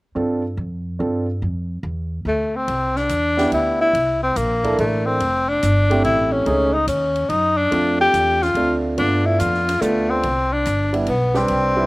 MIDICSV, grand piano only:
0, 0, Header, 1, 2, 480
1, 0, Start_track
1, 0, Key_signature, 0, "major"
1, 0, Tempo, 419874
1, 185, Time_signature, 3, 2, 24, 8
1, 13563, End_track
2, 0, Start_track
2, 0, Title_t, "Grand piano"
2, 0, Program_c, 0, 0
2, 172, Note_on_c, 0, 60, 48
2, 179, Note_on_c, 0, 62, 44
2, 179, Note_on_c, 0, 65, 44
2, 188, Note_on_c, 0, 69, 50
2, 468, Note_off_c, 0, 60, 0
2, 471, Note_off_c, 0, 65, 0
2, 472, Note_off_c, 0, 62, 0
2, 476, Note_off_c, 0, 69, 0
2, 1133, Note_on_c, 0, 62, 39
2, 1135, Note_on_c, 0, 60, 43
2, 1140, Note_on_c, 0, 65, 44
2, 1144, Note_on_c, 0, 69, 48
2, 1430, Note_off_c, 0, 62, 0
2, 1431, Note_off_c, 0, 60, 0
2, 1433, Note_off_c, 0, 65, 0
2, 1435, Note_off_c, 0, 69, 0
2, 3856, Note_on_c, 0, 59, 58
2, 3856, Note_on_c, 0, 62, 53
2, 3860, Note_on_c, 0, 64, 53
2, 3866, Note_on_c, 0, 67, 67
2, 4472, Note_off_c, 0, 59, 0
2, 4472, Note_off_c, 0, 62, 0
2, 4474, Note_off_c, 0, 64, 0
2, 4476, Note_off_c, 0, 67, 0
2, 5303, Note_on_c, 0, 58, 60
2, 5307, Note_on_c, 0, 62, 55
2, 5311, Note_on_c, 0, 64, 57
2, 5316, Note_on_c, 0, 69, 64
2, 5915, Note_off_c, 0, 58, 0
2, 5917, Note_off_c, 0, 62, 0
2, 5919, Note_off_c, 0, 64, 0
2, 5921, Note_off_c, 0, 69, 0
2, 6747, Note_on_c, 0, 57, 65
2, 6751, Note_on_c, 0, 60, 53
2, 6756, Note_on_c, 0, 64, 54
2, 6759, Note_on_c, 0, 67, 68
2, 7357, Note_off_c, 0, 57, 0
2, 7359, Note_off_c, 0, 60, 0
2, 7361, Note_off_c, 0, 64, 0
2, 7363, Note_off_c, 0, 67, 0
2, 7383, Note_on_c, 0, 57, 56
2, 7387, Note_on_c, 0, 61, 54
2, 7387, Note_on_c, 0, 63, 53
2, 7397, Note_on_c, 0, 68, 68
2, 7676, Note_off_c, 0, 57, 0
2, 7678, Note_off_c, 0, 61, 0
2, 7678, Note_off_c, 0, 63, 0
2, 7683, Note_off_c, 0, 68, 0
2, 8815, Note_on_c, 0, 57, 50
2, 8823, Note_on_c, 0, 62, 48
2, 8824, Note_on_c, 0, 60, 46
2, 8827, Note_on_c, 0, 65, 62
2, 9559, Note_off_c, 0, 57, 0
2, 9563, Note_off_c, 0, 62, 0
2, 9564, Note_off_c, 0, 60, 0
2, 9565, Note_off_c, 0, 65, 0
2, 9788, Note_on_c, 0, 57, 53
2, 9790, Note_on_c, 0, 60, 49
2, 9797, Note_on_c, 0, 62, 52
2, 9797, Note_on_c, 0, 65, 55
2, 10244, Note_off_c, 0, 57, 0
2, 10248, Note_off_c, 0, 62, 0
2, 10252, Note_off_c, 0, 65, 0
2, 10261, Note_on_c, 0, 57, 53
2, 10262, Note_on_c, 0, 59, 49
2, 10265, Note_on_c, 0, 62, 51
2, 10269, Note_off_c, 0, 60, 0
2, 10269, Note_on_c, 0, 65, 55
2, 11001, Note_off_c, 0, 57, 0
2, 11001, Note_off_c, 0, 59, 0
2, 11003, Note_off_c, 0, 62, 0
2, 11005, Note_off_c, 0, 65, 0
2, 11217, Note_on_c, 0, 57, 59
2, 11220, Note_on_c, 0, 59, 52
2, 11220, Note_on_c, 0, 62, 49
2, 11228, Note_on_c, 0, 65, 64
2, 11701, Note_off_c, 0, 57, 0
2, 11703, Note_off_c, 0, 59, 0
2, 11703, Note_off_c, 0, 62, 0
2, 11707, Note_off_c, 0, 65, 0
2, 12493, Note_on_c, 0, 55, 53
2, 12497, Note_on_c, 0, 59, 49
2, 12503, Note_on_c, 0, 62, 56
2, 12505, Note_on_c, 0, 64, 59
2, 12642, Note_off_c, 0, 55, 0
2, 12644, Note_off_c, 0, 59, 0
2, 12647, Note_off_c, 0, 62, 0
2, 12648, Note_off_c, 0, 64, 0
2, 12969, Note_on_c, 0, 55, 68
2, 12972, Note_on_c, 0, 71, 58
2, 12977, Note_on_c, 0, 62, 58
2, 12982, Note_on_c, 0, 67, 68
2, 13436, Note_off_c, 0, 55, 0
2, 13438, Note_off_c, 0, 71, 0
2, 13441, Note_off_c, 0, 62, 0
2, 13453, Note_on_c, 0, 55, 56
2, 13455, Note_on_c, 0, 71, 56
2, 13459, Note_on_c, 0, 62, 54
2, 13460, Note_on_c, 0, 64, 67
2, 13563, Note_off_c, 0, 55, 0
2, 13563, Note_off_c, 0, 62, 0
2, 13563, Note_off_c, 0, 64, 0
2, 13563, Note_off_c, 0, 67, 0
2, 13563, Note_off_c, 0, 71, 0
2, 13563, End_track
0, 0, End_of_file